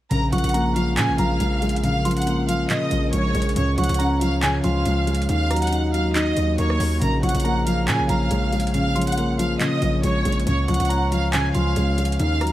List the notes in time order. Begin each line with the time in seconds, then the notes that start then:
0.11 A#1 C#3 G#3 C#4 G#4 A#4 A#5, closed hi-hat
0.32 A#1 F3 F#5 C#6 F#6, closed hi-hat
0.38 closed hi-hat
0.44 A#1, closed hi-hat
0.49 closed hi-hat
0.54 A#3 A#5, closed hi-hat
0.76 F3 F5 F6, closed hi-hat
0.97 A#2 C#3 G#4 G#5, clap, closed hi-hat
1.09 A#1
1.18 A#1 F3 F5 A#5 F6, closed hi-hat
1.40 A#1 G#3, closed hi-hat
1.62 G#3, closed hi-hat
1.69 closed hi-hat
1.76 closed hi-hat
1.83 C#3 F5 F6, closed hi-hat
2.05 F3 C6, closed hi-hat
2.11 closed hi-hat
2.17 F#5 F#6, closed hi-hat
2.22 closed hi-hat
2.27 A#3, closed hi-hat
2.48 F3 F5 F6, closed hi-hat
2.70 C#3 D#5 D#6, clap, closed hi-hat
2.91 A#1 F3, closed hi-hat
3.12 A#1 G#3 C#5 C#6, closed hi-hat
3.35 A#1 G#3, closed hi-hat
3.42 closed hi-hat
3.49 closed hi-hat
3.56 C#2 C#3 G#3 C#5 C#6, closed hi-hat
3.78 C#2 F3 F#5 C#6 F#6, closed hi-hat
3.84 closed hi-hat
3.89 C#2, closed hi-hat
3.94 closed hi-hat
3.99 C#4 A#5, closed hi-hat
4.21 F3 F5 F6, closed hi-hat
4.42 C#3 G#4 G#5, clap, closed hi-hat
4.64 C#2 F3 F5 C6 F6, closed hi-hat
4.86 C#2 G#3, closed hi-hat
5.07 G#3, closed hi-hat
5.15 closed hi-hat
5.22 closed hi-hat
5.29 D#2 D#3 A#3 D#4 F#4 D#5 F5 F6, closed hi-hat
5.50 F#3 A#5, cross-stick, closed hi-hat
5.56 closed hi-hat
5.62 F#5 F#6, closed hi-hat
5.67 closed hi-hat
5.72 D#4, closed hi-hat
5.93 F#3 F5 F6, closed hi-hat
6.15 D#3 D#5 D#6, clap, closed hi-hat
6.37 D#2 F#3, closed hi-hat
6.58 D#2 A#3 C#5 C#6, closed hi-hat
6.70 cross-stick
6.80 D#2 A#3, open hi-hat
7.01 A#1 C#3 A#3 G#4 A#4 C#5 A#5, closed hi-hat
7.23 A#1 F3 F#5 C#6 F#6, closed hi-hat
7.29 closed hi-hat
7.35 A#1, closed hi-hat
7.40 closed hi-hat
7.44 A#3 A#5, closed hi-hat
7.66 F3 F5 F6, closed hi-hat
7.88 A#2 C#3 G#4 G#5, clap, closed hi-hat
7.99 A#1
8.09 A#1 F3 F5 A#5 F6, closed hi-hat
8.31 A#1 G#3, closed hi-hat
8.53 G#3, closed hi-hat
8.60 closed hi-hat
8.67 closed hi-hat
8.74 C#3 F5 F6, closed hi-hat
8.96 F3 C6, closed hi-hat
9.02 closed hi-hat
9.07 F#5 F#6, closed hi-hat
9.12 closed hi-hat
9.17 A#3, closed hi-hat
9.39 F3 F5 F6, closed hi-hat
9.60 C#3 D#5 D#6, clap, closed hi-hat
9.82 A#1 F3, closed hi-hat
10.03 A#1 G#3 C#5 C#6, closed hi-hat
10.25 A#1 G#3, closed hi-hat
10.32 closed hi-hat
10.40 closed hi-hat
10.47 C#2 C#3 G#3 C#4 C#5 C#6, closed hi-hat
10.68 C#2 F3 F#5 C#6 F#6, closed hi-hat
10.74 closed hi-hat
10.80 C#2, closed hi-hat
10.85 closed hi-hat
10.89 C#4 A#5, closed hi-hat
11.12 F3 F5 F6, closed hi-hat
11.33 C#3 G#4 G#5, clap, closed hi-hat
11.55 C#2 F3 F5 C6 F6, closed hi-hat
11.76 C#2 G#3, closed hi-hat
11.98 G#3, closed hi-hat
12.05 closed hi-hat
12.12 closed hi-hat
12.20 D#2 D#3 A#3 D#4 F#4 D#5 F5 F6, closed hi-hat
12.41 F#3 A#5, cross-stick, closed hi-hat
12.47 closed hi-hat